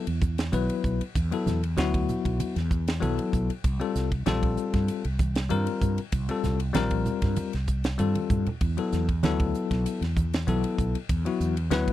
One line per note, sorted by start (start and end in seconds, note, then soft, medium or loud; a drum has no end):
0.07 0.49 E2 medium
0.07 ride medium
0.22 kick medium
0.22 hi-hat pedal medium
0.22 high conga medium
0.38 snare loud
0.38 ride medium
0.52 0.68 B1 loud
0.52 1.01 F#3 medium
0.52 1.01 B3 medium
0.52 1.02 E4 medium
0.52 1.02 B4 medium
0.52 hi-hat pedal medium
0.52 ride medium
0.52 high conga medium
0.70 ride medium
0.84 0.99 B1 medium
0.84 kick medium
0.84 hi-hat pedal medium
0.84 muted conga soft
1.01 muted fretless electric bass stroke soft
1.01 ride medium
1.15 1.31 E2 medium
1.15 kick loud
1.15 hi-hat pedal medium
1.15 ride medium
1.15 muted conga soft
1.32 1.60 F#3 medium
1.32 1.60 B3 medium
1.32 1.61 E4 medium
1.32 1.61 A4 medium
1.32 ride medium
1.46 1.75 E2 medium
1.46 snare soft
1.46 hi-hat pedal medium
1.46 muted conga soft
1.46 low conga medium
1.63 ride medium
1.77 2.06 D2 medium
1.77 2.54 F#3 medium
1.77 2.55 B3 medium
1.77 2.55 E4 medium
1.77 2.55 F#4 loud
1.77 snare loud
1.77 hi-hat pedal medium
1.77 ride medium
1.77 high conga medium
1.94 kick medium
1.94 ride medium
2.09 hi-hat pedal medium
2.09 low conga medium
2.25 2.39 B1 medium
2.25 kick medium
2.25 ride medium
2.40 hi-hat pedal medium
2.40 ride medium
2.40 muted conga soft
2.40 high conga medium
2.56 2.99 E2 medium
2.56 snare soft
2.56 ride soft
2.71 kick medium
2.71 hi-hat pedal medium
2.88 snare loud
2.88 ride medium
3.00 3.17 B1 loud
3.00 3.50 F#3 medium
3.00 3.50 B3 medium
3.00 3.51 E4 medium
3.00 3.51 A4 medium
3.00 hi-hat pedal medium
3.00 ride medium
3.00 high conga medium
3.19 ride medium
3.33 3.48 B1 medium
3.33 kick medium
3.33 hi-hat pedal medium
3.49 muted fretless electric bass stroke soft
3.49 ride medium
3.64 3.79 C2 medium
3.64 kick loud
3.64 hi-hat pedal medium
3.64 ride medium
3.64 muted conga soft
3.80 4.09 G3 medium
3.80 4.09 C4 medium
3.80 4.09 F4 medium
3.80 4.09 A4 medium
3.80 ride medium
3.95 4.24 C2 medium
3.95 snare soft
3.95 hi-hat pedal medium
3.95 muted conga soft
4.12 kick medium
4.12 ride soft
4.26 4.55 A#1 medium
4.26 5.03 G3 medium
4.26 5.03 C4 medium
4.26 5.04 F4 medium
4.26 5.04 A4 loud
4.26 snare loud
4.26 hi-hat pedal medium
4.26 ride medium
4.26 high conga medium
4.43 kick medium
4.43 ride medium
4.57 hi-hat pedal medium
4.74 4.88 G2 medium
4.74 kick medium
4.74 snare soft
4.74 ride medium
4.88 hi-hat pedal medium
4.88 ride medium
4.88 muted conga soft
5.05 5.47 C2 medium
5.05 ride medium
5.19 kick medium
5.19 hi-hat pedal medium
5.19 high conga medium
5.35 snare loud
5.35 ride medium
5.49 5.66 G2 loud
5.49 5.99 G3 medium
5.49 5.99 C4 medium
5.49 5.99 F4 medium
5.49 5.99 A#4 loud
5.49 hi-hat pedal medium
5.49 ride medium
5.49 high conga medium
5.67 ride medium
5.81 5.97 G2 medium
5.81 kick medium
5.81 hi-hat pedal medium
5.81 muted conga soft
5.98 muted fretless electric bass stroke soft
5.98 ride medium
6.12 6.28 C2 medium
6.12 kick loud
6.12 hi-hat pedal medium
6.12 ride medium
6.12 muted conga soft
6.29 6.58 G3 medium
6.29 6.58 C4 medium
6.29 6.58 F4 medium
6.29 6.59 A4 medium
6.29 ride medium
6.44 6.73 C2 medium
6.44 snare soft
6.44 hi-hat pedal medium
6.44 muted conga soft
6.44 low conga medium
6.60 ride medium
6.73 7.04 A#1 medium
6.73 7.51 G3 medium
6.73 7.52 C4 medium
6.73 7.52 F4 medium
6.73 7.52 A#4 loud
6.73 snare loud
6.73 hi-hat pedal medium
6.73 ride medium
6.73 high conga medium
6.91 kick medium
6.91 ride medium
7.05 hi-hat pedal medium
7.05 low conga medium
7.22 7.36 G2 medium
7.22 kick medium
7.22 snare soft
7.22 ride medium
7.36 hi-hat pedal medium
7.36 ride medium
7.36 muted conga soft
7.36 high conga medium
7.53 7.96 C2 medium
7.53 snare soft
7.53 ride medium
7.68 kick medium
7.68 hi-hat pedal medium
7.84 snare loud
7.84 ride medium
7.98 8.15 G2 medium
7.98 8.47 G3 medium
7.98 8.48 C4 medium
7.98 8.48 F4 medium
7.98 8.48 A4 medium
7.98 hi-hat pedal medium
7.98 ride medium
7.98 high conga soft
8.15 ride medium
8.15 high conga soft
8.30 8.46 G2 medium
8.30 kick medium
8.30 hi-hat pedal medium
8.30 low conga medium
8.46 muted fretless electric bass stroke soft
8.46 ride soft
8.46 low conga medium
8.61 8.77 E2 medium
8.61 kick loud
8.61 hi-hat pedal medium
8.61 ride medium
8.61 muted conga soft
8.77 9.06 F#3 medium
8.77 9.06 B3 medium
8.77 9.07 E4 medium
8.77 9.07 A4 medium
8.77 ride medium
8.92 9.21 E2 medium
8.92 snare soft
8.92 hi-hat pedal medium
8.92 muted conga soft
9.09 kick medium
9.09 ride medium
9.23 9.52 D2 medium
9.23 10.00 F#3 medium
9.23 10.01 B3 medium
9.23 10.01 E4 medium
9.23 10.01 A4 loud
9.23 snare loud
9.23 hi-hat pedal medium
9.23 ride medium
9.23 high conga medium
9.40 kick medium
9.40 ride medium
9.55 hi-hat pedal medium
9.71 9.85 B1 medium
9.71 kick medium
9.71 snare soft
9.71 ride medium
9.86 hi-hat pedal medium
9.86 ride medium
9.86 muted conga soft
10.01 10.44 E2 medium
10.01 snare soft
10.01 ride medium
10.17 kick medium
10.17 hi-hat pedal medium
10.17 high conga medium
10.33 snare loud
10.33 ride medium
10.47 10.63 B1 medium
10.47 10.96 F#3 medium
10.47 10.96 B3 medium
10.47 10.96 E4 medium
10.47 10.97 A4 medium
10.47 hi-hat pedal medium
10.47 ride medium
10.47 high conga medium
10.64 ride medium
10.78 10.94 B1 medium
10.78 kick medium
10.78 hi-hat pedal medium
10.95 muted fretless electric bass stroke soft
10.95 ride medium
11.09 11.25 E2 medium
11.09 kick loud
11.09 hi-hat pedal medium
11.09 ride medium
11.09 muted conga soft
11.25 11.54 F#3 medium
11.25 11.55 B3 medium
11.25 11.55 E4 medium
11.25 11.55 F#4 medium
11.25 ride medium
11.40 11.69 E2 medium
11.40 hi-hat pedal medium
11.40 muted conga soft
11.57 ride medium
11.70 11.93 D2 medium
11.70 11.93 F#3 medium
11.70 11.93 B3 medium
11.70 11.93 E4 medium
11.70 11.93 B4 loud
11.70 snare loud
11.70 hi-hat pedal medium
11.70 ride medium
11.70 high conga medium
11.88 kick medium
11.88 ride medium